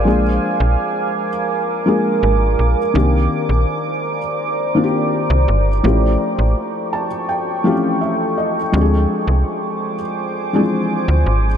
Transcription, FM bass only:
0, 0, Header, 1, 2, 480
1, 0, Start_track
1, 0, Tempo, 722892
1, 37, Time_signature, 4, 2, 24, 8
1, 7684, End_track
2, 0, Start_track
2, 0, Title_t, "FM bass"
2, 0, Program_c, 0, 39
2, 40, Note_on_c, 0, 34, 99
2, 259, Note_off_c, 0, 34, 0
2, 400, Note_on_c, 0, 34, 90
2, 509, Note_off_c, 0, 34, 0
2, 1480, Note_on_c, 0, 32, 91
2, 1699, Note_off_c, 0, 32, 0
2, 1721, Note_on_c, 0, 34, 78
2, 1829, Note_off_c, 0, 34, 0
2, 1959, Note_on_c, 0, 36, 103
2, 2179, Note_off_c, 0, 36, 0
2, 2319, Note_on_c, 0, 34, 84
2, 2428, Note_off_c, 0, 34, 0
2, 3520, Note_on_c, 0, 36, 93
2, 3628, Note_off_c, 0, 36, 0
2, 3640, Note_on_c, 0, 31, 93
2, 3859, Note_off_c, 0, 31, 0
2, 3878, Note_on_c, 0, 33, 107
2, 4098, Note_off_c, 0, 33, 0
2, 4240, Note_on_c, 0, 33, 88
2, 4349, Note_off_c, 0, 33, 0
2, 5800, Note_on_c, 0, 38, 109
2, 6019, Note_off_c, 0, 38, 0
2, 6158, Note_on_c, 0, 36, 89
2, 6268, Note_off_c, 0, 36, 0
2, 7359, Note_on_c, 0, 38, 89
2, 7468, Note_off_c, 0, 38, 0
2, 7479, Note_on_c, 0, 32, 85
2, 7684, Note_off_c, 0, 32, 0
2, 7684, End_track
0, 0, End_of_file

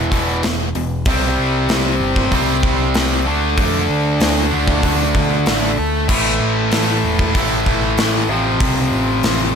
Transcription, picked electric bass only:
0, 0, Header, 1, 2, 480
1, 0, Start_track
1, 0, Tempo, 629591
1, 809, Time_signature, 4, 2, 24, 8
1, 7282, End_track
2, 0, Start_track
2, 0, Title_t, "Picked electric bass"
2, 0, Program_c, 0, 34
2, 0, Note_on_c, 0, 28, 89
2, 78, Note_off_c, 0, 28, 0
2, 89, Note_on_c, 0, 28, 68
2, 319, Note_off_c, 0, 28, 0
2, 339, Note_on_c, 0, 28, 84
2, 564, Note_off_c, 0, 28, 0
2, 575, Note_on_c, 0, 28, 75
2, 803, Note_off_c, 0, 28, 0
2, 810, Note_on_c, 0, 36, 95
2, 1030, Note_off_c, 0, 36, 0
2, 1057, Note_on_c, 0, 36, 75
2, 1274, Note_off_c, 0, 36, 0
2, 1293, Note_on_c, 0, 36, 81
2, 1512, Note_off_c, 0, 36, 0
2, 1530, Note_on_c, 0, 31, 84
2, 1750, Note_off_c, 0, 31, 0
2, 1765, Note_on_c, 0, 36, 95
2, 1987, Note_off_c, 0, 36, 0
2, 2009, Note_on_c, 0, 36, 84
2, 2229, Note_off_c, 0, 36, 0
2, 2254, Note_on_c, 0, 36, 89
2, 2472, Note_off_c, 0, 36, 0
2, 2499, Note_on_c, 0, 38, 83
2, 2714, Note_off_c, 0, 38, 0
2, 2724, Note_on_c, 0, 41, 91
2, 2946, Note_off_c, 0, 41, 0
2, 2974, Note_on_c, 0, 38, 79
2, 3191, Note_off_c, 0, 38, 0
2, 3210, Note_on_c, 0, 38, 86
2, 3429, Note_off_c, 0, 38, 0
2, 3455, Note_on_c, 0, 38, 92
2, 3671, Note_off_c, 0, 38, 0
2, 3683, Note_on_c, 0, 38, 91
2, 3905, Note_off_c, 0, 38, 0
2, 3928, Note_on_c, 0, 38, 79
2, 4147, Note_off_c, 0, 38, 0
2, 4166, Note_on_c, 0, 33, 95
2, 4386, Note_off_c, 0, 33, 0
2, 4408, Note_on_c, 0, 38, 83
2, 4627, Note_off_c, 0, 38, 0
2, 4643, Note_on_c, 0, 33, 105
2, 4864, Note_off_c, 0, 33, 0
2, 4885, Note_on_c, 0, 33, 83
2, 5105, Note_off_c, 0, 33, 0
2, 5128, Note_on_c, 0, 33, 97
2, 5347, Note_off_c, 0, 33, 0
2, 5374, Note_on_c, 0, 28, 88
2, 5590, Note_off_c, 0, 28, 0
2, 5604, Note_on_c, 0, 33, 98
2, 5824, Note_off_c, 0, 33, 0
2, 5840, Note_on_c, 0, 33, 86
2, 6063, Note_off_c, 0, 33, 0
2, 6083, Note_on_c, 0, 33, 80
2, 6304, Note_off_c, 0, 33, 0
2, 6320, Note_on_c, 0, 33, 76
2, 6543, Note_off_c, 0, 33, 0
2, 6561, Note_on_c, 0, 36, 90
2, 6783, Note_off_c, 0, 36, 0
2, 6803, Note_on_c, 0, 33, 87
2, 7024, Note_off_c, 0, 33, 0
2, 7043, Note_on_c, 0, 33, 86
2, 7265, Note_off_c, 0, 33, 0
2, 7282, End_track
0, 0, End_of_file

